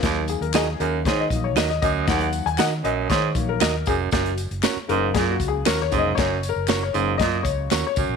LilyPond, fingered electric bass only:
\new Staff \with { instrumentName = "Fingered electric bass" } { \clef bass \time 4/4 \key ees \minor \tempo 4 = 117 ees,8. ees,8. ees,8 ees8 bes,,8 ees,8 d,8 | ees,8. ees,16 ees8 bes,,8 ees8 bes,,8 ees,8 f,,8 | ges,,8. ges,,16 r8 ges,,8 ges,8 des,8 ees,8 f,,8 | ges,,8. ges,,8. ges,,8 ges,8 des,8 ees,16 r16 des,16 bes,,16 | }